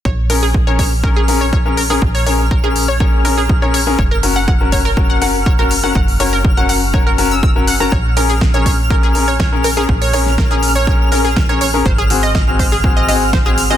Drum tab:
HH |--o---o---o---o-|-oo---o---o---o-|--o---o---o---o-|-oo---o---o---o-|
SD |----------------|----------------|----------------|----------------|
BD |o---o-o-o---o---|o---o---o---o---|o---o-o-o---o---|o---o---o---o---|

HH |--o---o---o---o-|-oo---o---o---o-|--o---o---o---o-|
SD |----o-------o---|---oo-------o---|----o-------o---|
BD |o---o-o-o---o---|o---o---o---o---|o---o-o-o---o---|